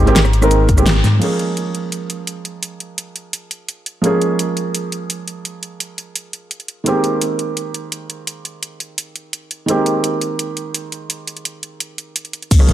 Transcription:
Already playing: sub bass G#1
0.06 felt piano D#3 G#3 A#3 C4 G4, closed hi-hat
0.16 snare, closed hi-hat, shaker
0.25 cross-stick, shaker
0.33 closed hi-hat
0.41 felt piano D#3 G#3 A#3 C4 A#4, cross-stick, shaker
0.51 closed hi-hat, shaker
0.69 kick, closed hi-hat, shaker
0.77 felt piano D#3 G#3 A#3 C4 G4, cross-stick, shaker
0.86 snare, closed hi-hat, shaker
1.04 sub bass G#2, snare, open hi-hat, shaker
1.19 felt piano F3 G#3 A#3 C#4, closed hi-hat, crash
1.24 felt piano G#4
1.39 closed hi-hat
1.57 closed hi-hat
1.75 closed hi-hat
1.92 closed hi-hat
2.10 closed hi-hat
2.27 closed hi-hat
2.45 closed hi-hat
2.63 closed hi-hat
2.80 closed hi-hat
2.98 closed hi-hat
3.16 closed hi-hat
3.33 closed hi-hat
3.51 closed hi-hat
3.69 closed hi-hat
3.86 closed hi-hat
4.02 felt piano F3 G#3 A#3 C#4, closed hi-hat
4.06 felt piano G#4
4.22 closed hi-hat
4.39 closed hi-hat
4.57 closed hi-hat
4.75 closed hi-hat
4.92 closed hi-hat
5.10 closed hi-hat
5.28 closed hi-hat
5.45 closed hi-hat
5.63 closed hi-hat
5.80 closed hi-hat
5.98 closed hi-hat
6.16 closed hi-hat
6.33 closed hi-hat
6.51 closed hi-hat
6.60 closed hi-hat
6.68 closed hi-hat
6.84 felt piano D#3 G#3 A#3 C4, closed hi-hat
6.89 felt piano G4
7.04 closed hi-hat
7.21 closed hi-hat
7.39 closed hi-hat
7.57 closed hi-hat
7.74 closed hi-hat
7.92 closed hi-hat
8.10 closed hi-hat
8.27 closed hi-hat
8.45 closed hi-hat
8.63 closed hi-hat
8.80 closed hi-hat
8.98 closed hi-hat
9.16 closed hi-hat
9.33 closed hi-hat
9.51 closed hi-hat
9.66 felt piano D#3 G#3 A#3 C4, closed hi-hat
9.71 felt piano G4
9.86 closed hi-hat
10.04 closed hi-hat
10.21 closed hi-hat
10.39 closed hi-hat
10.57 closed hi-hat
10.74 closed hi-hat
10.92 closed hi-hat
11.10 closed hi-hat
11.27 closed hi-hat
11.37 closed hi-hat
11.45 closed hi-hat
11.63 closed hi-hat
11.80 closed hi-hat
11.98 closed hi-hat
12.16 closed hi-hat
12.25 closed hi-hat
12.33 closed hi-hat
12.42 closed hi-hat
12.51 sub bass C#2, kick, closed hi-hat, crash, shaker
12.59 felt piano F3 G#3 A#3 C#4 G#4, cross-stick
12.69 kick, closed hi-hat, shaker

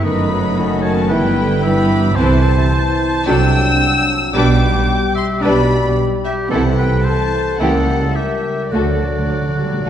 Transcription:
0.01 double bass section F#1, cello section F#2, viola section D#3 B3, french horn section A3 D#4, violin section D#4 B4 B5, oboe D#5
0.29 viola section F#3
0.56 viola section D#3 C#4, violin section F#4 A4
0.82 viola section D#3, oboe C#5, violin section A5
1.08 double bass section G1, cello section G2, viola section E3 B3, french horn section G3 E4, violin section E4 B4 G5, oboe B4
1.36 viola section D3
1.63 viola section E3 B3, french horn section G3 E4, violin section G4 B4 B5, oboe E5
1.90 french horn section F#3
2.16 double bass section C2, cello section C3, french horn section E3 E4, viola section E3 C4, violin section E4 A4 A5, oboe C5
3.26 double bass section C2, cello section C3, french horn section F#3 D4, viola section F#3 D4, violin section D4 A4 E6, oboe G5
4.34 double bass section B1, cello section B2, french horn section G3 G4, viola section G3 D4, violin section D4 B4 D6, oboe G5
5.15 oboe E5, violin section C6
5.42 double bass section B1, cello section B2, viola section G3 D4, french horn section G3 G4, violin section D4 B4 B5, oboe D5
6.24 oboe G4, violin section E5
6.51 double bass section C2, cello section C3, french horn section E3 A4, viola section E3 C4, violin section E4 A4 F#5, oboe A4
6.78 oboe B4, violin section G5
7.04 french horn section E3 A4, oboe C5, violin section A5
7.59 double bass section C#2, cello section C#3, viola section E3 A#3, french horn section G3 A#4, violin section E4 G4 F#5, oboe A4
8.15 oboe G4, french horn section A#4, violin section E5
8.70 double bass section D2, cello section D3, timpani D3, french horn section F#3 A4, viola section A3, oboe F#4, violin section F#4 A4 D5
8.80 timpani D3
8.88 timpani D3
8.96 timpani D3
9.03 timpani D3
9.12 timpani D3
9.19 timpani D3
9.27 timpani D3, viola section F#3
9.34 timpani D3
9.42 timpani D3
9.49 timpani D3
9.57 timpani D3, viola section G3
9.65 timpani D3
9.73 timpani D3
9.80 timpani D3
9.84 double bass section A1, cello section A2, viola section A3, violin section F#4 A4

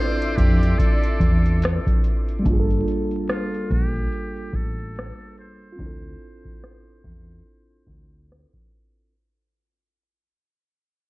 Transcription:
Already playing: tine electric piano C4 D4 E4 F4 A4, analog synth pad D4 E5 C6 D6, muted trumpet C5
0.22 closed hi-hat
0.37 fingered electric bass F2, muted trumpet G4, kick, closed hi-hat
0.63 closed hi-hat
0.78 muted trumpet A4, kick, closed hi-hat
1.03 closed hi-hat
1.20 fingered electric bass E2, kick, closed hi-hat
1.46 closed hi-hat
1.62 finger snap, cross-stick, closed hi-hat
1.87 kick, closed hi-hat
2.04 closed hi-hat
2.29 closed hi-hat
2.39 tine electric piano G3 A#3
2.45 fingered electric bass G1, tine electric piano D4, kick, closed hi-hat
2.50 tine electric piano F4 G#4
2.59 tine electric piano A4
2.71 closed hi-hat
2.88 closed hi-hat
3.11 closed hi-hat
3.29 muted trumpet F4, cross-stick, closed hi-hat
3.54 closed hi-hat
3.70 fingered electric bass A#1, muted trumpet G4, kick, closed hi-hat
3.96 closed hi-hat
4.12 closed hi-hat
4.36 closed hi-hat
4.53 fingered electric bass A1, muted trumpet A4, kick, closed hi-hat
4.79 closed hi-hat
4.96 cross-stick, closed hi-hat
5.21 closed hi-hat
5.38 muted trumpet C5, closed hi-hat
5.62 closed hi-hat
5.72 tine electric piano C4 F4
5.79 fingered electric bass D2, tine electric piano D4, kick, closed hi-hat
5.83 tine electric piano E4 A4
6.04 closed hi-hat
6.22 closed hi-hat
6.45 kick, closed hi-hat
6.63 cross-stick, closed hi-hat
6.88 closed hi-hat
7.04 fingered electric bass E2, kick, closed hi-hat
7.30 closed hi-hat
7.46 closed hi-hat
7.87 fingered electric bass D2, kick, closed hi-hat
8.32 cross-stick
8.53 kick

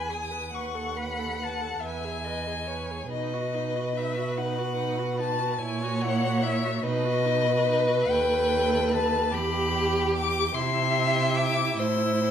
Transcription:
Already playing: cello E2, viola B4, violin G#5 B5
0.09 viola G#4, violin D#6
0.31 viola B4
0.52 cello D#2, viola B4, violin F#5 C#6
0.74 viola A4
0.96 viola B4, violin B5
1.19 viola A4
1.40 viola B4, violin A5
1.61 viola A4
1.80 cello E2, viola B4, violin E5
1.85 violin G#5
2.05 viola G#4
2.24 viola B4, violin D#5
2.47 viola G#4
2.67 viola B4, violin C#5
2.91 viola G#4
3.08 cello B2, viola D#4, violin B4 D#5
3.34 viola F#4
3.54 viola D#4
3.75 viola F#4
3.96 viola D#4, violin E5
4.16 viola F#4
4.37 viola D#4, violin F#5
4.58 viola F#4
4.77 viola D#4
4.99 viola F#4
5.19 viola D#4, violin A5
5.40 viola F#4
5.58 cello A#2, viola E4, violin C#5 G#5
5.83 viola F#4
6.01 viola E4, violin F#5
6.23 viola F#4
6.43 viola E4, violin E5
6.64 viola F#4
6.83 cello B2, viola D#4, violin B4 D#5
7.05 viola F#4
7.25 viola D#4
7.46 viola F#4
7.66 viola D#4
7.88 viola F#4
8.09 cello D#2, viola A4, violin G5
8.91 violin A5
9.32 cello E2, violin G4 B5, viola G4
10.16 violin D6
10.55 cello C3, viola E4, violin E5 C6
11.36 violin D6
11.77 cello A2, violin C5 E6

